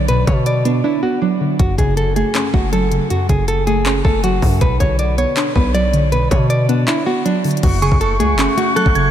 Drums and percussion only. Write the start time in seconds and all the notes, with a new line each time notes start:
0.08 closed hi-hat
0.27 kick, closed hi-hat
0.46 closed hi-hat
0.65 closed hi-hat
1.59 kick, closed hi-hat
1.78 kick, closed hi-hat
1.97 closed hi-hat
2.16 closed hi-hat
2.35 clap, closed hi-hat
2.54 kick
2.73 closed hi-hat
2.92 closed hi-hat
3.10 closed hi-hat
3.29 kick, closed hi-hat
3.48 closed hi-hat
3.67 closed hi-hat
3.86 clap, closed hi-hat
4.05 kick
4.24 closed hi-hat
4.42 kick, open hi-hat
4.61 kick, closed hi-hat
4.80 kick, closed hi-hat
4.99 closed hi-hat
5.18 closed hi-hat
5.37 clap, closed hi-hat
5.56 kick
5.75 closed hi-hat
5.93 closed hi-hat
6.12 closed hi-hat
6.31 kick, closed hi-hat
6.50 closed hi-hat
6.69 closed hi-hat
6.88 clap, closed hi-hat
7.26 closed hi-hat
7.44 closed hi-hat, open hi-hat
7.51 closed hi-hat
7.57 closed hi-hat
7.63 kick, closed hi-hat, crash
7.82 closed hi-hat
7.92 kick
8.01 closed hi-hat
8.20 closed hi-hat
8.39 clap, closed hi-hat
8.58 closed hi-hat
8.77 closed hi-hat
8.86 kick
8.95 closed hi-hat